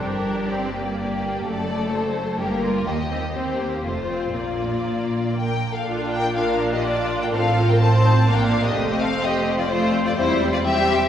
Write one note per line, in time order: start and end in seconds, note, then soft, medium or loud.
0.00 1.43 G1 medium
0.00 1.43 G2 medium
0.00 0.51 D4 soft
0.00 0.97 G4 medium
0.00 0.51 A#4 medium
0.50 0.75 C4 medium
0.50 1.44 D5 soft
0.74 1.45 A#3 medium
0.98 1.45 G4 medium
1.46 2.38 F#1 medium
1.46 2.38 F#2 medium
1.46 1.67 A3 medium
1.46 2.40 A4 medium
1.46 1.92 D5 medium
1.69 2.38 A3 medium
1.93 2.40 C5 medium
2.39 2.88 G1 medium
2.39 2.88 G2 medium
2.39 2.86 A#3 medium
2.39 2.64 G4 medium
2.39 2.87 A#4 medium
2.64 2.87 F4 medium
2.87 3.82 D#2 medium
2.87 3.83 D#2 medium
2.87 2.95 A#3 medium
2.87 3.34 G4 medium
2.87 3.35 D#5 medium
3.12 3.20 C4 medium
3.35 3.59 C4 medium
3.35 3.83 G4 medium
3.35 3.83 C5 medium
3.60 3.84 A#3 medium
3.84 4.33 F1 medium
3.84 4.34 F2 medium
3.84 4.09 A3 medium
3.84 4.33 F4 soft
3.84 4.33 C5 medium
4.09 4.34 C4 medium
4.34 5.64 A#1 soft
4.34 5.64 A#2 medium
4.34 5.66 A#3 medium
4.34 5.34 F4 soft
4.34 5.36 D5 soft
5.36 5.72 A#4 medium
5.36 5.72 G5 medium
5.74 6.11 A4 soft
5.74 6.11 F5 medium
5.86 7.29 A#1 medium
5.86 7.29 A#2 medium
5.86 6.32 D4 medium
5.86 6.32 F4 medium
6.11 6.34 A#4 medium
6.11 6.35 G5 medium
6.35 6.83 D4 medium
6.35 6.83 F4 medium
6.35 6.72 A#4 medium
6.35 6.72 F5 medium
6.72 6.85 G4 medium
6.72 6.85 D#5 medium
6.84 7.32 D4 medium
6.84 7.21 F4 medium
6.84 7.32 F4 medium
6.84 7.21 D5 medium
7.21 7.33 A#4 medium
7.21 7.26 G5 medium
7.33 8.27 A1 medium
7.33 8.27 A2 medium
7.33 7.79 C4 medium
7.33 7.79 F4 medium
7.33 7.69 A4 medium
7.33 7.68 F5 medium
7.69 7.74 A#4 medium
7.69 7.81 G5 medium
7.81 8.28 C4 medium
7.81 7.89 F4 medium
7.81 8.28 C5 medium
7.81 8.28 A5 medium
8.04 8.12 D#4 soft
8.28 8.75 A#1 medium
8.28 8.75 A#2 medium
8.28 8.76 A#3 medium
8.28 8.75 D4 medium
8.28 8.64 A#4 medium
8.28 8.36 F5 medium
8.36 8.43 G5 medium
8.43 8.64 F5 medium
8.64 9.00 G4 medium
8.64 9.00 D#5 medium
8.76 10.14 F1 medium
8.76 10.14 F2 medium
8.76 9.68 A3 medium
8.76 9.68 C4 medium
8.99 9.08 A4 medium
8.99 9.23 F5 medium
9.22 9.57 G4 medium
9.22 9.58 D#5 medium
9.58 9.63 F4 medium
9.58 9.70 D5 medium
9.69 10.16 A3 medium
9.69 10.15 C4 medium
9.69 10.04 F4 medium
9.69 10.05 C5 medium
10.05 10.10 F4 medium
10.05 10.17 D5 medium
10.16 11.09 E1 medium
10.16 11.09 E2 medium
10.16 10.63 G3 medium
10.16 10.63 C4 medium
10.16 10.52 E4 medium
10.16 10.52 C5 medium
10.52 10.57 F4 medium
10.52 10.58 D5 medium
10.64 11.09 G3 medium
10.64 11.09 C4 medium
10.64 11.09 G4 medium
10.64 11.09 E5 medium